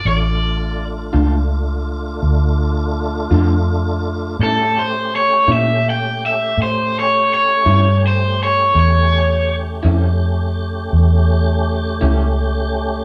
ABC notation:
X:1
M:12/8
L:1/8
Q:3/8=55
K:Aphr
V:1 name="Overdriven electric guitar"
d2 z8 z2 | A c ^c e g e =c ^c c2 =c ^c | ^c2 z8 z2 |]
V:2 name="Tonewheel organ"
[A,DF]12 | [A,^CG]12 | [A,^CG]12 |]
V:3 name="Clean electric guitar"
z3 [D,A,DF] z4 z [D,A,DF] z2 | [A,,G,^CE] z2 [A,,G,CE] z4 z [A,,G,CE] z2 | z3 [A,,G,^CE] z4 z [A,,G,CE] z2 |]
V:4 name="Fingered electric bass" clef=bass
A,,,3 ^C,,3 D,,3 F,,3 | A,,3 B,,3 A,,3 G,,3 | E,,3 F,,3 E,,3 ^C,,3 |]